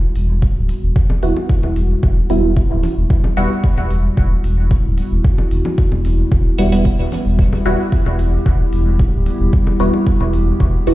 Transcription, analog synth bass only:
0.16 E1
0.56 D1
0.83 E1
1.23 E1
1.63 E1
2.03 E1
2.30 E1
2.70 D1
2.97 E1
3.37 E1
3.78 E1
4.17 E1
4.44 E1
4.85 D1
5.12 E1
5.51 E1
5.92 E1
6.32 E1
6.58 E1
6.99 E1
7.26 E1
7.66 E1
8.06 E1
8.46 E1
8.73 E1
9.13 D1
9.40 E1
9.80 E1
10.20 E1
10.60 E1
10.87 E1

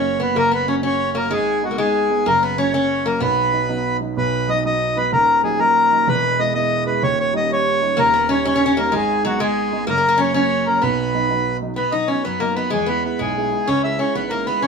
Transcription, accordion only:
Already playing: C#5
0.22 B4
0.38 A#4
0.55 B4
0.69 C#5
0.86 C#5
1.17 A#4
1.33 G#4
1.65 F#4
1.80 G#4
2.28 A#4
2.43 B4
2.59 C#5
2.75 C#5
3.06 A#4
3.22 B4
4.18 B4
4.50 D#5
4.66 D#5
4.97 B4
5.13 A#4
5.44 G#4
5.60 A#4
6.08 B4
6.40 D#5
6.55 D#5
6.87 B4
7.03 C#5
7.20 C#5
7.37 D#5
7.53 C#5
7.99 A#4
8.31 C#5
8.48 C#5
8.79 A#4
8.96 G#4
9.27 F#4
9.42 G#4
9.89 A#4
10.21 C#5
10.35 C#5
10.67 A#4
10.82 B4
11.76 B4
11.91 D#5
12.07 C#5
12.23 B4
12.40 A#4
12.55 B4
12.73 G#4
12.88 B4
13.05 B4
13.21 G#4
13.68 C#5
13.84 E5
14.00 C#5
14.15 B4
14.30 A#4
14.47 B4
14.63 C#5

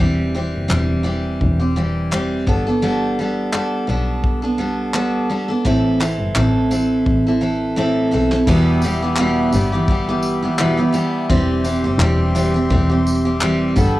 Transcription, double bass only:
0.00 E1
0.55 F#1
0.70 E1
1.41 E1
2.47 G1
3.88 B1
5.65 A1
6.19 G1
6.36 A1
7.06 A1
8.14 B1
8.47 E1
9.53 G1
11.30 E1
11.83 F#1
11.98 E1
12.71 E1
13.76 G1

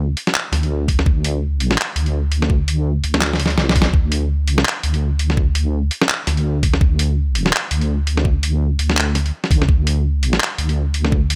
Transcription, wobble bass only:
Already playing: D2
0.52 D2
1.06 D2
1.96 D2
3.04 D2
3.57 C2
3.94 D2
4.44 C#2
4.84 D2
6.27 D2
6.81 D2
7.71 D2
8.79 D2
9.51 D2
9.69 D2
10.58 D2

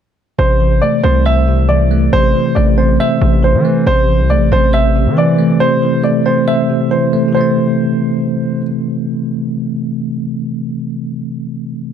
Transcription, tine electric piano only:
0.39 C3
0.61 E3
0.83 A3
1.03 C4
1.26 C5
1.48 C3
1.69 E3
1.91 A3
2.13 C3
2.35 E3
2.56 A3
2.78 C4
3.00 C5
3.22 C3
3.43 E3
3.65 A3
3.87 C3
4.09 E3
4.31 A3
4.52 C4
4.73 C5
4.96 C3
5.17 E3
5.39 A3
5.61 C3
5.82 E3
6.04 A3
6.26 C4
6.48 C5
6.69 C3
6.91 E3
7.13 A3
7.29 C3
7.33 E3
7.37 A3 C4

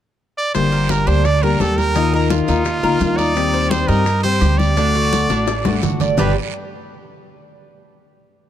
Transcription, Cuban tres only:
0.72 A#4
1.07 D4
1.43 A#4
1.61 G4
1.96 D#4
2.13 A#4
2.48 D#4
2.83 A#4
3.19 D#4
3.54 C5
3.88 D#4
4.24 C5
4.41 G4
4.77 D4
4.95 F#4
5.30 D4
5.65 F#4
6.01 D5
6.18 G3 D4 G4

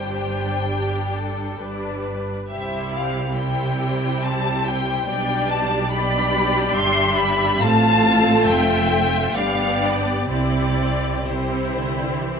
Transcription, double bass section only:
Already playing: G1
1.60 G1
2.51 C2
5.07 B1
6.76 G1
7.61 A1
8.47 F1
9.35 G1
10.30 C2

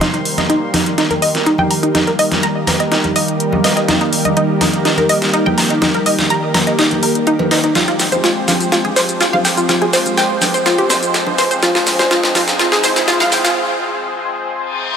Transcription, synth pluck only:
0.01 D#4
0.14 D#4
0.38 D#5
0.50 D#4
0.74 D#4
0.98 D#4
1.11 A#4
1.22 D#5
1.46 D#4
1.59 G5
1.71 A#5
1.83 D#4
1.95 D#4
2.07 A#4
2.19 D#5
2.43 A#5
2.67 A#5
2.80 D#5
2.92 D#4
3.16 D#5
3.64 D#5
3.77 D#5
3.88 D#4
4.01 D#4
4.25 D#5
4.37 D#4
4.61 D#4
4.85 D#4
4.98 A#4
5.09 D#5
5.34 D#4
5.46 G5
5.58 A#5
5.70 D#4
5.82 D#4
5.95 A#4
6.06 D#5
6.30 A#5
6.55 A#5
6.67 D#5
6.79 D#4
7.03 A#4
7.27 D#4
7.51 D#4
7.64 D#4
7.75 F4
7.88 F4
8.12 C5
8.24 F4
8.48 F4
8.72 F4
8.85 G#4
8.96 C5
9.21 F4
9.33 F5
9.45 G5
9.57 F4
9.69 F4
9.82 G#4
9.93 C5
10.17 G5
10.42 G5
10.54 C5
10.66 F4
10.78 G4
10.90 C5
11.38 C5
11.51 C5
11.63 F4
11.75 F4
11.99 C5
12.11 F4
12.35 F4
12.59 F4
12.72 G#4
12.84 C5
13.08 F4
13.20 F5
13.32 G5
13.44 F4

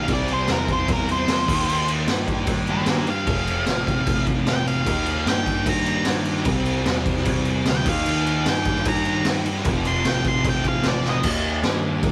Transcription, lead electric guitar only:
0.13 D5
0.33 C5
0.52 A#4
0.73 C5
0.93 A#4
1.12 C5
2.70 G4 D#5
2.89 F4 D5
3.10 F5
4.49 G5
4.68 F5
5.29 G5
5.69 A#5
7.70 G5
7.89 F5
8.48 G5
8.88 A#5
9.87 C6
10.07 G5
10.28 C6
10.49 G5
10.68 F5
10.88 D5
11.09 D#5

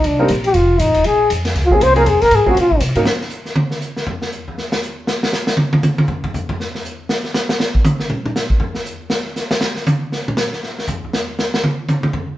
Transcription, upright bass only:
0.05 C2
0.30 A#1
0.54 F1
0.79 A1
0.89 F1
0.96 D#1
1.05 A#1
1.30 F2
1.55 C#2
1.80 C2
2.05 F2
2.14 C#2
2.22 A#1
2.31 G#2
2.46 muted upright bass stroke
2.54 A#2
2.80 C3
2.88 A#2
2.95 G#2

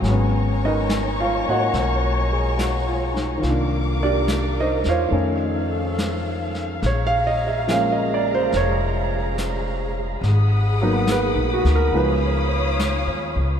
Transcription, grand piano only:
0.00 F#3 G#3
0.09 B3 C#4
0.65 D#4 A#4 B4 D#5
1.20 F4 F5
1.47 A#3 F#4 C#5 F#5
1.51 D#5
2.33 G#4
2.57 F#4
2.87 F4
3.14 D#4
3.38 D#3 F4
3.45 A#3
3.49 D4
4.03 D4 G4 A#4 D5
4.60 D#4 A#4 C5 D#5
4.89 F4 C5 C#5 F5
5.08 D#3 A3 D#4
5.13 C#4
6.86 C#5
7.07 F5
7.27 D#5
7.47 E5
7.67 F3 G#3 A#3 F5
7.72 C#4
7.92 D#5
8.14 D5
8.35 C5
8.57 C#5
10.81 F#3 A#3 B3 D#4
11.11 B4
11.34 D#4
11.53 F#4
11.75 A#4
11.94 F3 G#3 B3 D#4 B4

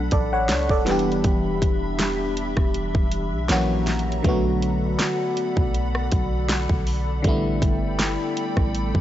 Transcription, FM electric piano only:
0.13 A4 D5
0.33 C#5 F#5
0.70 A4 D5
0.85 E3 G3 B3
0.90 D4 G4
3.49 E3 F#3 A#3 C#4 F#4
4.23 D3 F#3 A3
4.27 B3 F#4
7.22 D3 G3 A3
7.27 B3 E4

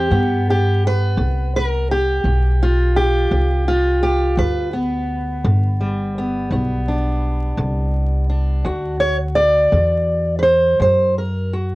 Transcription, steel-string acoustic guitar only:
Already playing: G4
0.11 G2 B3
0.50 G4
0.87 B4
1.18 D3
1.56 A#4
1.91 G4
2.25 G2
2.62 F4
2.96 G4
3.31 D3
3.68 F4
4.03 G4
4.38 G2 B4
4.73 B3
5.44 D3
5.80 G3
6.18 B3
6.52 G2 B3
6.88 D4
7.58 D3
8.30 D4
8.65 D2 F#4
9.00 C#5
9.35 D5
9.73 D3
10.39 B4 C5
10.80 D2 C5
11.18 A#4
11.53 F#4

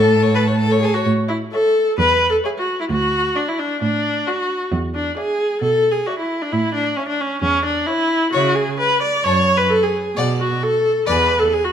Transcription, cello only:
Already playing: A2
1.06 A2
1.98 E2
2.90 D2
3.82 A2
4.72 E2
5.62 B2
6.53 A2
7.42 E2
8.34 C#3
9.25 F#2
10.16 B2
11.08 E2

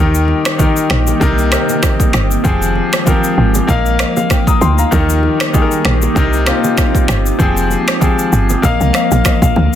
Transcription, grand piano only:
Already playing: D#3 D#4 G4
0.00 A#4
0.58 D#3 D#4 G4 A#4
1.20 C3 C4 D#4 A#4
1.51 C3 C4 D#4 A#4
2.44 F3 C4 G4 G#4
3.06 F3 C4 G4 A#4
3.67 A#3 A#4 D#5 F5
4.00 D#5
4.17 F5
4.47 A#5 D#6
4.61 G5 C6
4.78 F5 A#5
4.91 D#3 D#4 G4 A#4
5.53 D#3 D#4 G4 G#4
5.62 A#4
6.15 C3 C4 D#4 A#4
6.46 C3 C4 D#4 F4
7.38 F3 C4 G4 G#4
8.00 F3 C4 G4 G#4
8.62 A#3 A#4 D#5 F5
8.93 A#3 A#4 D#5 F5
9.25 D#5
9.42 F5

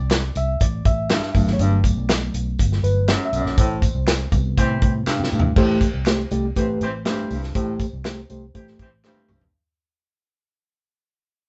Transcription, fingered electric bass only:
0.00 C2
0.36 C2
0.61 A1
0.86 A1
1.35 G1
1.47 G#1
1.59 G1
1.97 B1
2.34 B1
2.59 G1
2.83 G1
3.33 B1
3.45 A#1
3.58 A1
3.95 C2
4.32 C2
4.58 A2
4.82 A2
5.07 muted fingered electric bass stroke
5.19 C3
5.32 A2
5.56 A1
5.94 C2
6.31 C2
6.56 A1
6.81 A1
7.30 C2
7.55 A1
7.93 C2
8.30 C2
8.55 A1
8.80 A1
9.29 C2
9.41 A#1

